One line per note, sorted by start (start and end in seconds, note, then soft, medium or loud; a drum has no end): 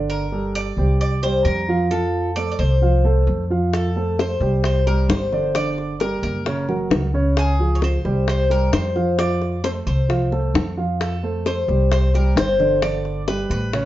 0.00 0.71 G1 medium
0.00 0.24 D3 medium
0.00 0.24 D4 medium
0.00 0.24 D5 medium
0.10 0.55 A#4 medium
0.32 0.69 G3 medium
0.32 0.69 G4 medium
0.32 0.70 A4 medium
0.55 1.00 D5 loud
0.77 1.41 C2 medium
0.77 1.15 G3 medium
0.77 1.15 G4 medium
0.77 1.15 C5 medium
1.01 1.23 D5 medium
1.23 1.60 G3 medium
1.23 1.60 G4 medium
1.23 1.46 C5 medium
1.23 1.60 C5 medium
1.45 2.53 F2 medium
1.45 1.87 A#4 medium
1.68 1.87 F3 medium
1.68 1.87 F4 medium
1.68 1.87 F5 medium
1.91 2.28 F3 medium
1.91 2.28 F4 medium
1.91 2.38 A4 medium
1.91 2.29 F5 medium
2.36 2.74 A3 medium
2.36 2.74 A4 medium
2.36 2.74 C5 medium
2.36 2.50 D5 medium
2.52 2.59 D5 medium
2.59 3.23 C2 medium
2.59 3.23 C5 medium
2.82 3.00 F3 medium
2.82 3.01 F4 medium
2.82 3.01 F5 medium
3.04 3.42 A3 medium
3.04 3.42 A4 medium
3.04 3.42 C5 medium
3.27 4.35 F2 medium
3.50 3.88 F3 medium
3.50 3.88 F4 medium
3.50 3.88 F5 medium
3.73 4.16 A4 medium
3.73 high bongo medium
3.96 4.33 A3 medium
3.96 4.33 A4 medium
3.96 4.33 C5 medium
4.19 4.64 C5 medium
4.19 high bongo medium
4.40 5.05 C2 medium
4.40 4.78 G3 medium
4.40 4.79 G4 medium
4.40 4.79 C5 medium
4.40 high bongo soft
4.64 4.87 C5 medium
4.64 high bongo medium
4.87 5.24 G3 medium
4.87 5.24 G4 medium
4.87 5.09 A#4 medium
4.87 5.24 C5 medium
4.87 high bongo soft
5.09 6.17 G1 medium
5.09 5.55 C5 medium
5.09 high bongo medium
5.09 low bongo medium
5.32 5.51 D3 medium
5.32 5.51 D4 medium
5.32 5.51 D5 medium
5.32 high bongo soft
5.55 5.92 D3 medium
5.55 5.93 D4 medium
5.55 6.00 D5 medium
5.55 5.93 D5 medium
5.55 high bongo medium
5.78 high bongo soft
6.00 6.38 G3 medium
6.00 6.38 G4 medium
6.00 6.21 A#4 medium
6.00 6.38 A#4 medium
6.00 high bongo medium
6.23 6.87 F#1 medium
6.23 6.87 A#4 medium
6.23 high bongo soft
6.46 6.64 C#3 medium
6.46 6.65 C#4 medium
6.46 6.65 C#5 medium
6.46 high bongo medium
6.69 7.06 F#3 medium
6.69 7.06 F#4 medium
6.69 7.06 A#4 medium
6.69 high bongo soft
6.90 7.98 C#2 medium
6.90 high bongo medium
6.90 low bongo medium
7.14 7.51 C#3 medium
7.14 7.51 C#4 medium
7.14 7.52 C#5 medium
7.37 7.77 G#4 medium
7.37 high bongo medium
7.59 7.97 F3 medium
7.59 7.97 F4 medium
7.59 7.97 G#4 medium
7.75 7.82 C#5 medium
7.82 8.25 C5 medium
7.82 high bongo medium
8.05 8.69 C2 medium
8.05 8.42 G3 medium
8.05 8.42 G4 medium
8.05 8.42 C5 medium
8.05 high bongo soft
8.28 8.51 C5 medium
8.28 high bongo medium
8.50 8.87 G3 medium
8.50 8.87 G4 medium
8.50 8.73 A#4 medium
8.50 8.88 C5 medium
8.50 high bongo soft
8.73 9.80 F2 medium
8.73 9.19 C5 medium
8.73 high bongo medium
8.73 low bongo medium
8.95 9.14 F3 medium
8.95 9.14 F4 medium
8.95 9.15 F5 medium
8.95 high bongo soft
9.18 9.56 F3 medium
9.18 9.56 F4 medium
9.18 9.61 D5 medium
9.18 9.56 F5 medium
9.18 high bongo medium
9.42 high bongo soft
9.64 10.01 A3 medium
9.64 10.01 A4 medium
9.64 9.70 C5 medium
9.64 10.01 C5 medium
9.64 high bongo medium
9.86 10.51 C2 medium
9.86 10.51 C5 medium
9.86 high bongo soft
10.09 10.28 F3 medium
10.09 10.28 F4 medium
10.09 10.28 F5 medium
10.09 high bongo medium
10.32 10.69 A3 medium
10.32 10.69 A4 medium
10.32 10.70 C5 medium
10.32 high bongo soft
10.54 11.62 F2 medium
10.54 high bongo medium
10.54 low bongo medium
10.77 11.15 F3 medium
10.77 11.15 F4 medium
10.77 11.15 F5 medium
11.01 11.43 A4 medium
11.01 high bongo medium
11.23 11.61 A3 medium
11.23 11.61 A4 medium
11.23 11.61 C5 medium
11.46 11.89 C5 medium
11.46 high bongo medium
11.68 12.33 C2 medium
11.68 12.06 G3 medium
11.68 12.06 G4 medium
11.68 12.06 C5 medium
11.68 high bongo soft
11.92 12.13 C5 medium
11.92 high bongo medium
12.14 12.52 G3 medium
12.14 12.52 G4 medium
12.14 12.36 A#4 medium
12.14 12.52 C5 medium
12.14 high bongo soft
12.36 13.44 G1 medium
12.36 12.82 C5 medium
12.36 high bongo medium
12.36 low bongo medium
12.60 12.78 D3 medium
12.60 12.78 D4 medium
12.60 12.79 D5 medium
12.60 high bongo soft
12.82 13.20 D3 medium
12.82 13.20 D4 medium
12.82 13.27 D5 medium
12.82 13.20 D5 medium
12.82 high bongo medium
13.05 high bongo soft
13.28 13.65 G3 medium
13.28 13.65 G4 medium
13.28 13.50 B4 medium
13.28 13.66 B4 medium
13.28 high bongo medium
13.50 13.85 A1 medium
13.50 13.85 B4 medium
13.50 high bongo soft
13.73 13.85 C#3 medium
13.73 13.85 C#4 medium
13.73 13.85 C#5 medium
13.73 high bongo medium